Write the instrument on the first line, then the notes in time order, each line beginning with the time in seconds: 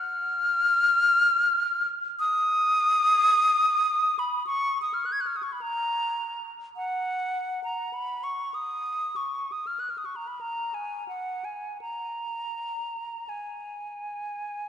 flute
Already playing: F6
2.19 D#6
4.19 B5
4.47 C#6
4.82 D#6
4.94 F6
5.06 F#6
5.12 G#6
5.21 F#6
5.27 F6
5.36 D#6
5.43 C#6
5.52 B5
5.61 A#5
6.76 F#5
7.64 A#5
7.93 B5
8.24 C#6
8.54 D#6
9.16 C#6
9.52 D#6
9.67 F6
9.80 F#6
9.90 F6
9.98 D#6
10.05 C#6
10.16 A#5
10.27 B5
10.41 A#5
10.74 G#5
11.08 F#5
11.45 G#5
11.81 A#5
13.29 G#5